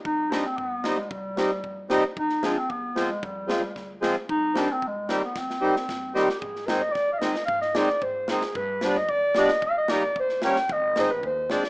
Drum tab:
SD |--o---o-|--o---o-|-oo---o-|--o-o-o-|
BD |o---o---|o---o---|o---o---|o---o---|

SD |--o---o-|oo-oo-oo|-oo-o-oo|-ooo--oo|
BD |o---o---|o---o---|o---o---|o---o---|

SD |--oo--oo|--o--ooo|--o---oo|
BD |o---o---|o---o---|o---o---|